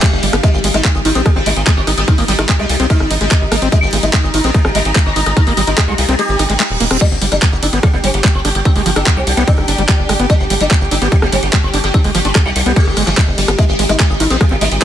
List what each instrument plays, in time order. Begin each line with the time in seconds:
Already playing: sitar G3, synth texture G3 G4, string section D4 G4 F5
0.02 acid bass G3, kick, clap, closed hi-hat
0.13 analog synth bass G1
0.23 analog synth bass G1, acid bass G3, open hi-hat, ride
0.33 analog synth bass G1, acid bass B3, cross-stick, closed hi-hat
0.43 acid bass G#3, string section D#4, sitar D#4, kick, closed hi-hat
0.54 analog synth bass G#1, sitar G#3
0.64 analog synth bass G#1, sitar G#3, acid bass G#3, open hi-hat, ride
0.74 analog synth bass G#1, acid bass G#3, sitar D#4, cross-stick, closed hi-hat
0.85 acid bass G#3, sitar G#3, kick, clap, closed hi-hat
0.95 analog synth bass G#1, sitar G#3
1.05 analog synth bass G#1, acid bass D#4, sitar D#4, open hi-hat, ride
1.15 analog synth bass A#1, sitar G#3, acid bass C4, closed hi-hat
1.26 sitar G#3, acid bass G#3, kick, cross-stick, closed hi-hat
1.36 analog synth bass G#1, sitar G#3, acid bass C4
1.46 analog synth bass G#1, acid bass G#3, sitar D#4, open hi-hat, ride
1.56 analog synth bass G#1, sitar G#3, closed hi-hat
1.67 acid bass G#3, sitar G#3, kick, clap, closed hi-hat
1.77 analog synth bass G#1, sitar C4
1.87 analog synth bass G#1, sitar G#3, acid bass D#4, cross-stick, open hi-hat, ride
1.97 analog synth bass G#1, sitar G#3, closed hi-hat
2.08 acid bass G#3, sitar D#4, kick, closed hi-hat
2.18 analog synth bass G#1, sitar G#3, acid bass A#3, open hi-hat
2.28 analog synth bass G#1, acid bass G3, sitar G#3, open hi-hat, ride
2.39 analog synth bass G#1, sitar D#4, acid bass D#4, cross-stick, closed hi-hat
2.49 sitar G#3, acid bass G#3, kick, clap, closed hi-hat
2.59 analog synth bass C2, acid bass G#3, sitar D#4
2.69 analog synth bass C2, sitar G#3, open hi-hat, ride
2.80 analog synth bass C2, sitar G#3, acid bass C4, closed hi-hat
2.90 acid bass G#3, sitar D#4, kick, closed hi-hat
3.00 analog synth bass G#1, cross-stick
3.11 analog synth bass G#1, acid bass D#4, open hi-hat, ride
3.21 analog synth bass G#1, acid bass G#3, closed hi-hat
3.31 acid bass G#3, kick, clap, closed hi-hat
3.41 analog synth bass G#1
3.52 analog synth bass G#1, acid bass A#3, cross-stick, open hi-hat, ride
3.62 analog synth bass G#1, acid bass C4, closed hi-hat
3.72 acid bass G#3, sitar D#4, kick, closed hi-hat
3.83 analog synth bass G#1, sitar G#3
3.93 analog synth bass G#1, sitar G#3, acid bass G#3, open hi-hat, ride
4.03 analog synth bass G#1, acid bass G#3, sitar D#4, closed hi-hat
4.10 sitar G#3, acid bass G#3, string section A#5, kick, cross-stick, clap, closed hi-hat
4.24 analog synth bass G#1, sitar G#3
4.34 analog synth bass G#1, sitar D#4, acid bass D#4, open hi-hat, ride
4.44 analog synth bass A#1, sitar G#3, acid bass C4, closed hi-hat
4.54 acid bass G#3, sitar G#3, kick, closed hi-hat
4.65 analog synth bass G#1, sitar G#3, acid bass C4, cross-stick
4.75 analog synth bass G#1, acid bass G#3, sitar D#4, open hi-hat, ride
4.85 analog synth bass G#1, sitar G#3, closed hi-hat
4.96 acid bass G#3, sitar G#3, kick, clap, closed hi-hat
5.06 analog synth bass G#1, sitar C4
5.16 analog synth bass G#1, sitar G#3, acid bass D#4, open hi-hat, ride
5.26 analog synth bass G#1, sitar G#3, cross-stick, closed hi-hat
5.37 acid bass G#3, sitar D#4, kick, closed hi-hat
5.47 analog synth bass G#1, sitar G#3, acid bass A#3, open hi-hat
5.57 analog synth bass G#1, acid bass G3, sitar G#3, open hi-hat, ride
5.67 analog synth bass G#1, sitar D#4, acid bass D#4, closed hi-hat
5.78 sitar G#3, acid bass G#3, kick, cross-stick, clap, closed hi-hat
5.88 analog synth bass C2, acid bass G#3, sitar F4
5.98 analog synth bass C2, sitar G#3, open hi-hat, ride
6.09 analog synth bass C2, sitar G#3, acid bass C4, closed hi-hat
6.19 acid bass G#3, sitar G4, closed hi-hat, reverse cymbal
6.29 analog synth bass G#1
6.39 analog synth bass G#1, acid bass D#4, cross-stick, open hi-hat, ride
6.50 analog synth bass G#1, acid bass G#3, clap, closed hi-hat
6.60 acid bass G#3, clap, closed hi-hat
6.70 analog synth bass D#1
6.80 analog synth bass D#1, acid bass A#3, open hi-hat, ride
6.91 analog synth bass D#1, acid bass C4, cross-stick, closed hi-hat
7.01 synth texture G3 G4, acid bass G3, sitar D4, string section D4, kick, closed hi-hat, crash
7.10 analog synth bass G1, sitar G3, string section G4
7.22 analog synth bass G1, sitar G3, acid bass G3, open hi-hat, ride
7.32 analog synth bass G1, acid bass G3, sitar D4, cross-stick, closed hi-hat
7.42 acid bass G3, sitar G3, kick, clap, closed hi-hat
7.52 analog synth bass G1, sitar G3
7.62 analog synth bass G1, sitar D4, acid bass D4, string section G5, open hi-hat, ride
7.73 analog synth bass G#1, sitar G3, acid bass B3, closed hi-hat
7.83 acid bass G3, sitar G3, kick, cross-stick, closed hi-hat
7.93 analog synth bass G1, sitar G3, acid bass B3
8.04 analog synth bass G1, acid bass G3, sitar C4, open hi-hat, ride
8.14 analog synth bass G1, sitar G3, closed hi-hat
8.24 acid bass G3, sitar G3, kick, clap, closed hi-hat
8.35 analog synth bass G1, sitar B3
8.45 analog synth bass G1, sitar G3, acid bass D4, cross-stick, open hi-hat, ride
8.55 analog synth bass G1, sitar G3, closed hi-hat
8.65 acid bass G3, sitar D4, kick, closed hi-hat
8.76 analog synth bass G1, sitar G3, acid bass G#3, open hi-hat
8.86 analog synth bass G1, acid bass F3, sitar G3, open hi-hat, ride
8.96 analog synth bass G1, acid bass D4, sitar D4, cross-stick, closed hi-hat
9.06 acid bass G3, sitar G3, kick, clap, closed hi-hat
9.17 analog synth bass C2, acid bass G3, sitar C4
9.27 analog synth bass C2, sitar G3, open hi-hat, ride
9.37 analog synth bass C2, sitar G3, acid bass B3, closed hi-hat
9.48 acid bass G3, sitar D4, kick, closed hi-hat
9.58 analog synth bass G1, cross-stick
9.68 analog synth bass G1, acid bass D4, open hi-hat, ride
9.78 analog synth bass G1, acid bass G3, closed hi-hat
9.89 acid bass G3, kick, clap, closed hi-hat
9.99 analog synth bass G1
10.09 analog synth bass G1, acid bass G#3, cross-stick, open hi-hat, ride
10.19 analog synth bass G1, acid bass B3, closed hi-hat
10.30 acid bass G3, sitar D4, kick, closed hi-hat
10.40 analog synth bass G1, sitar G3
10.50 analog synth bass G1, acid bass G3, sitar G3, open hi-hat, ride
10.61 analog synth bass G1, acid bass G3, sitar D4, closed hi-hat
10.71 acid bass G3, sitar G3, kick, cross-stick, clap, closed hi-hat
10.81 analog synth bass G1, sitar G3
10.91 analog synth bass G1, acid bass D4, sitar D4, open hi-hat, ride
11.02 analog synth bass G#1, sitar G3, acid bass B3, closed hi-hat
11.12 acid bass G3, sitar G3, kick, closed hi-hat
11.22 analog synth bass G1, sitar G3, acid bass B3, cross-stick
11.32 analog synth bass G1, acid bass G3, sitar C4, open hi-hat, ride
11.43 analog synth bass G1, sitar G3, closed hi-hat
11.53 acid bass G3, sitar G3, kick, clap, closed hi-hat
11.63 analog synth bass G1, sitar B3
11.74 analog synth bass G1, sitar G3, acid bass D4, open hi-hat, ride
11.84 analog synth bass G1, sitar G3, cross-stick, closed hi-hat
11.94 acid bass G3, sitar D4, kick, closed hi-hat
12.04 analog synth bass G1, sitar G3, acid bass G#3, open hi-hat
12.15 analog synth bass G1, acid bass F3, sitar G3, open hi-hat, ride
12.25 analog synth bass G1, sitar B3, acid bass D4, closed hi-hat
12.35 acid bass G3, sitar G3, kick, cross-stick, clap, closed hi-hat
12.45 analog synth bass C2, acid bass G3, sitar G3
12.56 analog synth bass C2, sitar G3, open hi-hat, ride
12.66 analog synth bass C2, sitar G3, acid bass B3, closed hi-hat
12.76 acid bass G3, sitar G3, kick, closed hi-hat
12.87 analog synth bass G1
12.97 analog synth bass G1, acid bass G#3, cross-stick, open hi-hat, ride
13.07 analog synth bass G1, acid bass F3, clap, closed hi-hat
13.17 acid bass G3, kick, clap, closed hi-hat
13.28 analog synth bass G1
13.38 analog synth bass G1, acid bass G3, open hi-hat, ride
13.48 analog synth bass G1, acid bass B3, cross-stick, closed hi-hat
13.59 acid bass G#3, sitar D#4, string section D#4, kick, closed hi-hat
13.69 analog synth bass G#1, sitar G#3
13.79 analog synth bass G#1, acid bass G#3, sitar G#3, open hi-hat, ride
13.89 analog synth bass G#1, acid bass G#3, sitar D#4, cross-stick, closed hi-hat
14.00 acid bass G#3, sitar G#3, kick, clap, closed hi-hat
14.10 analog synth bass G#1, sitar G#3
14.20 analog synth bass G#1, acid bass D#4, sitar D#4, open hi-hat, ride
14.30 analog synth bass A#1, sitar G#3, acid bass C4, closed hi-hat
14.41 acid bass G#3, sitar G#3, kick, cross-stick, closed hi-hat
14.51 analog synth bass G#1, sitar G#3, acid bass C4
14.61 analog synth bass G#1, acid bass G#3, sitar D#4, open hi-hat, ride
14.71 analog synth bass G#1, sitar G#3, closed hi-hat